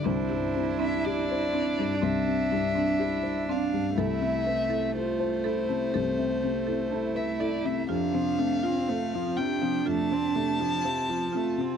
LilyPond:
<<
  \new Staff \with { instrumentName = "Violin" } { \time 4/4 \key a \minor \tempo 4 = 61 c''8. e''16 d''4 e''4. f''8 | e''4 c''2~ c''16 e''16 d''16 e''16 | f''4. g''8 a''2 | }
  \new Staff \with { instrumentName = "Marimba" } { \time 4/4 \key a \minor c'16 g'16 g'16 c'16 e'16 c''16 c'16 c''16 c'16 g'16 e'16 c'16 c''16 r16 c'16 r16 | a'16 e''16 e''16 a'16 c''16 a''16 a'16 a''16 a'16 e''16 c''16 a'16 a''16 r16 a'16 r16 | f'16 c''16 c''16 f'16 a'16 f''16 f'16 f''16 f'16 c''16 a'16 f'16 f''16 r16 f'16 r16 | }
  \new Staff \with { instrumentName = "Cello" } { \time 4/4 \key a \minor e'2 c'8 d'8 e'8 d'8 | e'8 c'8 f'8 e'8 c'4 e'4 | d'4 c'8 d'4. c'8 f'8 | }
  \new Staff \with { instrumentName = "Felt piano" } { \time 4/4 \key a \minor c,16 g,16 c'16 d'16 g'16 c''16 d'16 g,16 c,16 c'16 g,16 d'16 g'16 c''16 d'16 g,16 | c,16 c16 b'16 e'16 a'16 c''16 e'16 c16 c,16 c'16 c16 e'16 a'16 b'16 e'16 c16 | f,16 c16 c'16 f'16 c''16 f'16 c'16 c16 f,16 c'16 c16 f'16 c''16 f'16 c'16 c16 | }
  \new Staff \with { instrumentName = "Viola" } { \time 4/4 \key a \minor d'1 | a1 | c16 f16 a16 c'16 a16 f16 c16 f16 a16 c'16 a16 f16 c16 f16 a16 c'16 | }
>>